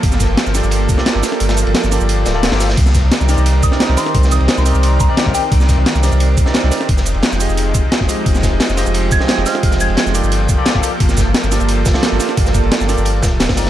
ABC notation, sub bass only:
X:1
M:4/4
L:1/16
Q:1/4=175
K:Cm
V:1 name="Sub bass" clef=bass
G,,,3 G,,, z G,,,2 G,,,3 G,,, z2 G,,, z2 | G,,,3 G,,, z G,,,2 G,,,3 D,,,3 G,,,3 | C,,3 C,, z C,,2 C,,3 C,, z2 C,, z2 | C,,3 C,, z C,,2 C,,3 C,, z2 C,, z2 |
C,,3 C,, z C,,2 C,,3 C,, z2 C,, z2 | F,,,3 F,,, z F,,,2 F,,,3 F,,, z2 F,,, z2 | F,,,3 F,,, z F,,,2 F,,,3 F,,, z2 F,,, z2 | F,,,3 F,,, z F,,,2 G,,,3 G,,, z2 G,,, z2 |
G,,,3 G,,, z G,,,2 G,,,3 G,,, z2 G,,, z2 | G,,,3 G,,, z G,,,2 G,,,3 D,,,3 G,,,3 |]